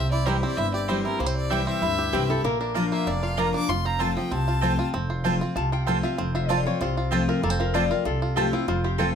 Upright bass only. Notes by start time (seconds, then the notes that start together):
Already playing: C2
0.58 G1
1.19 C2
1.82 D2
2.13 C2
2.44 A#1
3.06 F1
3.69 F1
4.31 C2
4.93 F1
5.56 C2
6.19 F1
6.81 C2
7.43 F1
8.05 C2
8.68 F1